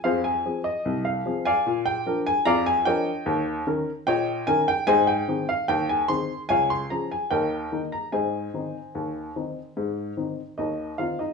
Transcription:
<<
  \new Staff \with { instrumentName = "Upright piano" } { \time 2/4 \key aes \major \tempo 4 = 74 <aes' c'' f''>16 aes''8 ees''8 f''8 <d'' f'' aes''>16~ | <d'' f'' aes''>16 g''8 aes''16 <d'' f'' bes''>16 aes''16 <des'' ees'' g''>8~ | <des'' ees'' g''>8 r8 <des'' ees'' g''>8 aes''16 g''16 | <c'' ees'' aes''>16 g''8 f''16 g''16 aes''16 c'''8 |
<des'' f'' aes''>16 c'''16 bes''16 aes''16 <bes' ees'' g''>8. bes''16 | <c'' ees'' aes''>2~ | <c'' ees'' aes''>4 <ees' ees''>8 <f' f''>16 <ees' ees''>16 | }
  \new Staff \with { instrumentName = "Upright piano" } { \clef bass \time 2/4 \key aes \major f,8 <f c' aes'>8 c,8 <f c' aes'>8 | bes,8 <f d' bes'>8 f,8 <f d' bes'>8 | ees,8 <ees des' bes'>8 bes,8 <ees des' bes'>8 | aes,8 <ees c' aes'>8 ees,8 <ees c' aes'>8 |
des,8 <f des' aes'>8 ees,8 <ees bes ees'>8 | aes,8 <ees c' ees'>8 ees,8 <ees c' ees'>8 | aes,8 <ees c' ees'>8 ees,8 <ees c' ees'>8 | }
>>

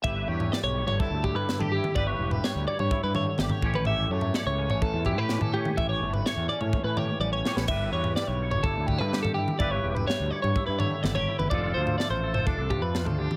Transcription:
<<
  \new Staff \with { instrumentName = "Clean electric guitar" } { \time 4/4 \key g \lydian \tempo 4 = 126 e''8 cis''8 d''16 cis''8 cis''16 a'8 g'16 b'8 a'16 g'8 | d''16 cis''8 b'16 cis''8 d''16 cis''8 b'16 cis''8 d''16 cis''8 b'16 | e''8 cis''8 d''16 cis''8 cis''16 a'8 g'16 b'8 a'16 g'8 | e''16 cis''8 b'16 cis''8 d''16 cis''8 b'16 cis''8 d''16 cis''8 b'16 |
e''8 cis''8 d''16 cis''8 cis''16 a'8 g'16 b'8 a'16 g'8 | d''16 cis''8 b'16 cis''8 d''16 cis''8 b'16 cis''8 d''16 cis''8 b'16 | d''8 c''8 d''16 c''8 c''16 a'8 g'16 b'8 a'16 g'8 | }
  \new Staff \with { instrumentName = "Clean electric guitar" } { \time 4/4 \key g \lydian << { <e' g' b'>8 g'4 cis''8 e'4 e'16 g'16 e'8 | <e' g' b'>8 g'4 cis''8 e'4 g'8 <cis' g' cis''>8 | g'4 cis''8 cis'4 e'16 g'16 cis'8 <cis' g' cis''>8 | g'4 cis''8 cis'4 g'8 cis'8 <cis' g' cis''>8 |
<e' g' b'>8 g'4 cis''8 e'4 g'8 e'8 | <e' g' b'>8 g'4 cis''8 e'4 e'16 g'16 e'8 | <d' f' a'>8 f'4 a'8 d'4 f'8 d'8 | } \\ { g,4 g4. d4. | g,4 g4. d4 a,8~ | a,8 a4. e4. a,8~ | a,8 a4. e4. a,8 |
g,4 g4. d4. | g,4 g4. d4. | f4 a4. f4. | } >> }
  \new Staff \with { instrumentName = "Fingered electric bass" } { \clef bass \time 4/4 \key g \lydian g,,8 e,8 r16 b,,8 g,,8 d,8 g,8 g,8 r16 | g,,8 e,,8 r16 d,16 r16 g,16 r16 g,8 r16 g,,16 r16 a,,8~ | a,,8 fis,8 r16 cis,8 a,,8 e,8 a,8 a,8 r16 | a,,8 g,,8 r16 e,16 r16 a,16 r16 a,8 r16 a,,8 r16 a,,16 |
g,,8 e,8 r16 b,,8 g,,8 d,8 g,8 g,8 r16 | g,,8 e,,8 r16 d,16 r16 g,16 r16 g,8 r16 g,,8 r16 fis,,16 | f,,8 d,8 r16 a,,8 f,,8 c,8 f,8 d,8 r16 | }
  \new DrumStaff \with { instrumentName = "Drums" } \drummode { \time 4/4 <bd tomfh>8. tomfh16 sn8. tomfh16 bd8 <bd tomfh>8 sn16 <tomfh toml>8 toml16 | <bd tomfh>8. tomfh16 sn8. tomfh16 bd8 <tomfh toml>8 <sn toml>16 <tomfh toml>16 bd16 toml16 | tomfh8. tomfh16 sn8. tomfh16 bd8 <bd tomfh>8 sn16 <tomfh toml>8 toml16 | <bd tomfh>8. tomfh16 sn8. tomfh16 bd8 <tomfh toml>8 tommh8 sn16 sn16 |
<cymc bd tomfh>8. tomfh16 sn8. tomfh16 bd8 <bd tomfh>8 sn16 <tomfh toml>8 toml16 | <bd tomfh>8. tomfh16 sn8. tomfh16 bd8 <tomfh toml>8 <sn toml>16 <tomfh toml>8 toml16 | <bd tomfh>8. tomfh16 sn8. tomfh16 bd8 <bd tomfh>8 sn16 <tomfh toml>8 toml16 | }
>>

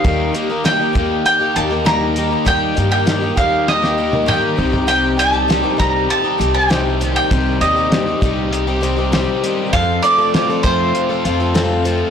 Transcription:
<<
  \new Staff \with { instrumentName = "Mandolin" } { \time 4/4 \key c \dorian \tempo 4 = 99 f''8 r8 g''4 g''8 a''8 bes''4 | g''8. g''8. f''8 ees''4 g''4 | g''8 a''4 bes''8 a''8. g''4 g''16~ | g''8 ees''2. r8 |
f''8 d''4 c''2~ c''8 | }
  \new Staff \with { instrumentName = "Twelve-string acoustic guitar" } { \time 4/4 \key c \dorian <ees g bes ees' g'>8 <g bes ees' g'>16 <bes ees' g'>16 <ees g bes ees' g'>16 <bes ees' g'>16 <g bes ees' g'>8. <bes ees' g'>16 <g bes ees' g'>16 <bes ees' g'>16 <ees g bes ees' g'>8 <g bes ees' g'>16 <bes ees' g'>16 | <ees g bes ees' g'>8 <g bes ees' g'>16 <bes ees' g'>16 <ees g bes ees' g'>16 <bes ees' g'>16 <g bes ees' g'>8. <bes ees' g'>16 <g bes ees' g'>16 <bes ees' g'>16 <ees g bes ees' g'>8 <g c' ees' g'>16 <c' ees' g'>16 | <c g c' ees' g'>8 <g c' ees' g'>16 <c' ees' g'>16 <c g c' ees' g'>16 <c' ees' g'>16 <g c' ees' g'>8. <c' ees' g'>16 <g c' ees' g'>16 <c' ees' g'>16 <c g c' ees' g'>8 <g c' ees' g'>8 | <c g c' ees' g'>8 <g c' ees' g'>16 <c' ees' g'>16 <c g c' ees' g'>16 <c' ees' g'>16 <g c' ees' g'>8. <c' ees' g'>16 <g c' ees' g'>16 <c' ees' g'>16 <c g c' ees' g'>8 <g c' ees' g'>8 |
<f c' f' a'>8 <f c' f' a'>16 <c' f' a'>16 <f c' f' a'>16 <c' f' a'>16 <f c' f' a'>8. <c' f' a'>16 <f c' f' a'>16 <c' f' a'>16 <f c' f' a'>8 <f c' f' a'>8 | }
  \new Staff \with { instrumentName = "Overdriven electric guitar" } { \clef bass \time 4/4 \key c \dorian ees8 bes8 ees8 bes8 g'8 ees'8 bes8 ees8 | ees8 bes8 ees8 bes8 g'8 ees'8 bes8 c8 | c8 g8 ees8 g8 g'8 c'8 g8 ees8 | c8 g8 ees8 g8 g'8 c'8 g8 ees8 |
f,8 a8 f8 a8 f'8 c'8 a8 f8 | }
  \new Staff \with { instrumentName = "Upright bass" } { \clef bass \time 4/4 \key c \dorian ees,8 r4 ees,8 r8 ees,4. | ees,8 g,4 ees,2 c,8~ | c,4. c,8 r8 c,4. | c,8 ees,4 c,2 r8 |
f,8 r4 f,8 r8 f,4. | }
  \new DrumStaff \with { instrumentName = "Drums" } \drummode { \time 4/4 <hh bd>8 hh8 <hh sn>8 <hh bd>8 hh8 hh8 <hh sn>8 hh8 | <hh bd>8 hh8 <hh sn>8 <hh bd>8 sn16 sn8 tommh16 toml8 tomfh16 tomfh16 | hh8 hh8 <hh sn>8 <hh bd>8 hh8 hh8 <hh sn>8 hh8 | <hh bd>8 hh8 <hh sn>8 <hh bd>8 hh8 hh8 <hh sn>8 hh8 |
<hh bd>8 hh8 <hh sn>8 <hh bd>8 hh8 hh8 <hh sn>8 hh8 | }
>>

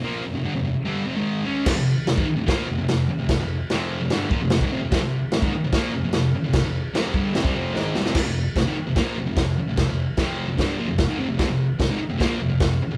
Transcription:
<<
  \new Staff \with { instrumentName = "Distorted electric guitar" } { \clef bass \time 4/4 \key f \minor \tempo 4 = 148 <bes, f bes>8 <f, c>16 <f, c>16 <g, d>16 <f, c>16 <f, c>16 r16 <g, d g>8 <f, c>16 <aes, ees aes>8. <des aes des'>8 | <f, c>16 <f, c>8 r16 <f, c>16 <aes, ees>16 r16 <f, c>16 <bes, f bes>8 <f, c>16 <f, c>16 <f, c>8 r16 <f, c>16~ | <f, c>16 <f, c>8 r16 <f, c f>8. <f, c>16 <g, d g>8 <bes, f>16 <f, c>16 <f, c>16 <aes, ees>16 <f, c>16 <f, c>16 | <f, c>16 <f, c>8 r16 <f, c>16 <aes, ees>16 r16 <f, c>16 <bes, f bes>8 <f, c>16 <f, c>16 <f, c>8 r16 <f, c>16~ |
<f, c>16 <f, c>8 r16 <f, c f>8 <g, d g>8 <f, c>16 <c g>16 <f, c f>8 <aes, ees aes>8 <c g>16 <f, c>16 | <f, c>16 <f, c>8 r16 <f, c>16 <aes, ees>16 r16 <f, c>16 <bes, f bes>8 <f, c>16 <f, c>16 <f, c>8 r16 <f, c>16~ | <f, c>16 <f, c>8 r16 <f, c f>8. <f, c>16 <g, d g>8 <bes, f>16 <f, c>16 <f, c>16 <aes, ees>16 <f, c>16 <f, c>16 | <f, c>16 <f, c>8 r16 <f, c>16 <aes, ees>16 r16 <f, c>16 <bes, f bes>8 <f, c>16 <f, c>16 <f, c>8 r16 <f, c>16 | }
  \new DrumStaff \with { instrumentName = "Drums" } \drummode { \time 4/4 r4 r4 r4 r4 | <cymc bd sn>4 <cymc sn>16 bd8. <cymc bd sn>4 <cymc sn>4 | <cymc bd sn>4 <cymc sn>4 <cymc sn>8 bd8 <cymc sn>16 bd8. | <cymc bd sn>4 <cymc sn>16 bd8. <cymc bd sn>4 <cymc sn>4 |
<cymc bd sn>4 <cymc sn>8 bd8 <cymc sn>16 bd8. sn8 sn16 sn16 | <cymc bd sn>4 <cymc bd sn>4 <cymc bd sn>4 <cymc bd sn>4 | <cymc bd sn>4 <cymc bd sn>4 <cymc bd sn>4 <cymc bd sn>4 | <cymc bd sn>4 <cymc bd sn>4 <cymc bd sn>4 <cymc bd sn>4 | }
>>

